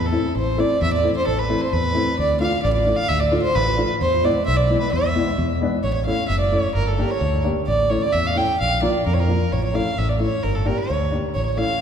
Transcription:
Already playing: E2
0.06 A4
0.11 A3 C4 E4
0.35 A1 C5
0.57 A3 C4 E4 D5
0.82 E2 E5
0.93 D5
1.03 A3 C4 E4
1.17 C5
1.27 A1 A4
1.39 B4
1.49 A3 C4 E4
1.61 C5
1.73 E2 B4
1.94 A3 C4 E4
2.19 D2 D5
2.39 A3 D4 F4 F5
2.63 A1 D5
2.74 D5
2.86 A3 D4 E4
2.96 F5
3.08 D2 E5
3.20 D5
3.32 A3 D4 F4
3.42 C5
3.55 A1 B4
3.77 A3 D4 F4
4.01 E2 C5
4.24 G#3 B3 E4 D5
4.47 B1 E5
4.57 D5
4.70 G#3 B3 E4
4.81 B4
4.92 E2 E5
5.15 G#3 B3 E4
5.38 E2
5.61 G#3 B3 D4
5.83 A1 C#5
5.94 C#5
6.06 A3 C#4 E4 F5
6.29 F#1 E5
6.40 D5
6.52 A3 C#4 E4 C#5
6.75 G1 A#4
6.86 A4 A#4
6.98 A#3 D4 G4 A#4
7.11 C#5
7.21 D2
7.44 A#3 D4 G4
7.67 A1 D5
7.89 A3 C#4 E4 C#5
8.02 D5
8.13 E2 E5
8.27 F5
8.35 A3 C#4 E4 G5
8.60 A#1 F5
8.82 A#3 D4 F4 D5
9.06 F2 A#4
9.14 C#5
9.20 A#4
9.28 A#3 D4 F4
9.52 A1 C#5
9.64 C#5
9.74 A3 C#4 E4 F5
9.98 A1 E5
10.09 D5
10.19 A3 C#4 E4 C#5
10.43 G1 A#4
10.55 A4
10.65 A#3 D4 G4 A#4
10.78 C#5
10.90 D2
11.12 A#3 D4 G4
11.34 A1 C#5
11.46 C#5
11.57 A3 C#4 E4 F5

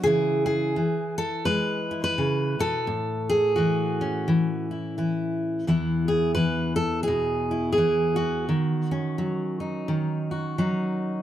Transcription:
0.03 C#3 E3 E4 G#4
0.46 G#4
0.76 E3
1.18 A4
1.45 G#3 B4
1.91 E4
2.04 B4
2.18 C#3
2.59 B2 A4
2.87 A2
3.30 G#4
3.56 E3 F#4
4.01 C#4
4.28 E3
4.71 E4
4.98 E3 E4
5.67 E2 E3 B3 E4
6.08 G#4
6.35 E3 B4
6.76 A4
7.03 G#4
7.08 B2
7.51 E4
7.73 G#4
7.78 E3
8.16 F#4
8.49 D#3
8.91 C#4
9.18 F#3
9.60 D#4
9.88 D#3
10.31 F#4
10.58 F#3 D#4

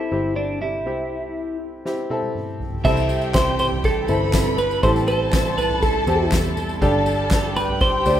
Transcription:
Already playing: C3 C4 E4 G4 A4 C5
0.11 G1 C4 E4 G4
0.36 D4
0.62 C3 E4
0.86 C2 C4 E4 G4
1.85 C4 E4 G4, snare
2.10 C4 E4 A4, high tom
2.23 high tom
2.35 mid tom
2.60 floor tom
2.72 floor tom
2.84 C2 C3 E3 G3 C4 E4 G4 A4 E5 G5, kick, crash, tambourine
2.97 tambourine
3.09 G3 C4 E4 A4, ride, tambourine
3.22 tambourine
3.34 C3 E3 G3 C4 E4 A4 C5, kick, snare, clap, ride, tambourine
3.59 C5, floor tom, ride, tambourine
3.72 floor tom
3.83 G3 C4 E4 A4, kick, ride, tambourine
4.08 G1 G3 C4 E4 A4 B4 B5, ride, tambourine
4.33 C3 E3 G3 C4 E4 A4, kick, snare, clap, ride, tambourine
4.57 G3 C4 E4 A4 B4, ride, tambourine
4.71 tambourine
4.82 A1 A2 E3 G3 C4 E4 G4 A4 C5 A5, kick, ride, tambourine
4.96 tambourine
5.08 G3 C4 E4 A4 C5, ride, tambourine
5.32 A2 E3 G3 C4 E4 A4, kick, snare, clap, ride, tambourine
5.57 B4, floor tom, ride, tambourine
5.70 floor tom
5.82 G3 C4 E4 A4, kick, ride, tambourine
6.07 E2 G3 C4 E4 G4 A4, ride, tambourine
6.32 A2 E3 G3 C4 E4 A4, kick, snare, clap, ride, tambourine
6.56 G3 C4 E4 A4, ride, tambourine
6.69 tambourine
6.81 G1 G2 G3 D4 G4 A4 A5, kick, ride, tambourine
7.06 D4 G4 A4, ride, tambourine
7.31 G3 D4 G4 A4, kick, snare, clap, ride, tambourine
7.56 G4 B4 G5, ride, tambourine
7.68 floor tom
7.80 G3 D4 G4 A4 C5, kick, ride, tambourine
8.05 D2 D4 G4 A4 C5, ride, tambourine

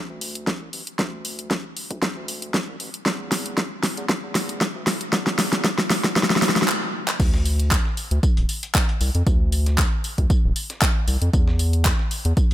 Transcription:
0.10 D2
0.21 open hi-hat
0.35 closed hi-hat
0.47 kick, snare, closed hi-hat
0.61 C2
0.73 A1, open hi-hat
0.87 closed hi-hat
0.99 D2, kick, snare, closed hi-hat
1.25 open hi-hat
1.39 closed hi-hat
1.51 kick, snare, closed hi-hat
1.77 open hi-hat
1.91 D2, kick, closed hi-hat
2.02 kick, snare, closed hi-hat
2.17 D2
2.28 open hi-hat
2.42 closed hi-hat
2.54 kick, snare, closed hi-hat
2.68 C2
2.80 A1, open hi-hat
2.94 closed hi-hat
3.06 E2, kick, snare, closed hi-hat
3.32 snare, open hi-hat
3.46 closed hi-hat
3.58 kick, snare, closed hi-hat
3.83 snare, open hi-hat
3.97 E2, closed hi-hat
4.09 kick, snare, closed hi-hat
4.23 E2
4.35 snare, open hi-hat
4.49 closed hi-hat
4.61 kick, snare, closed hi-hat
4.75 D2
4.87 B1, snare, open hi-hat
5.01 closed hi-hat
5.13 E2, kick, snare, closed hi-hat
5.27 snare
5.39 snare, open hi-hat
5.53 snare, closed hi-hat
5.64 kick, snare, closed hi-hat
5.78 snare
5.90 snare, open hi-hat
6.04 E2, kick, snare, closed hi-hat
6.16 kick, snare, closed hi-hat
6.23 snare
6.30 snare
6.36 snare
6.42 snare, open hi-hat
6.49 snare
6.56 snare, closed hi-hat
6.62 snare
6.68 clap
7.08 clap
7.20 D2, kick, closed hi-hat, crash, tambourine
7.34 snare
7.45 open hi-hat, tambourine
7.60 closed hi-hat
7.71 kick, snare, clap, closed hi-hat, tambourine
7.85 snare
7.97 open hi-hat, tambourine
8.11 D2, closed hi-hat
8.23 kick, closed hi-hat, tambourine
8.37 D1, closed hi-hat
8.49 open hi-hat, tambourine
8.63 closed hi-hat
8.75 kick, snare, clap, closed hi-hat, tambourine
8.89 closed hi-hat
9.01 C2, open hi-hat, tambourine
9.15 F2, closed hi-hat
9.27 D2, kick, closed hi-hat, tambourine
9.52 open hi-hat, tambourine
9.66 snare, closed hi-hat
9.78 kick, snare, clap, closed hi-hat, tambourine
10.04 open hi-hat, tambourine
10.18 D2, kick, closed hi-hat
10.30 kick, closed hi-hat, tambourine
10.44 D1
10.56 open hi-hat, tambourine
10.70 snare, closed hi-hat
10.82 kick, snare, clap, closed hi-hat, tambourine
11.08 C2, open hi-hat, tambourine
11.22 F2, closed hi-hat
11.33 E2, kick, closed hi-hat, tambourine
11.48 snare
11.59 open hi-hat, tambourine
11.73 closed hi-hat
11.85 kick, snare, clap, closed hi-hat, tambourine
11.99 snare
12.11 open hi-hat, tambourine
12.25 E2, closed hi-hat
12.37 kick, closed hi-hat, tambourine

